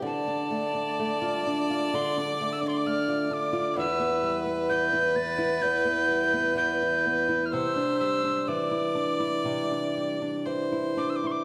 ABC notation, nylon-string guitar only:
X:1
M:4/4
L:1/16
Q:1/4=63
K:Ddor
V:1 name="Nylon-string guitar"
D, D A, D A, F D F D, D A, D A, F D F | E,, B, G, B, E, E B, E E,, B, G, B, E, E B, E | C, D G, D E, E D E C, D G, D E, E D E |]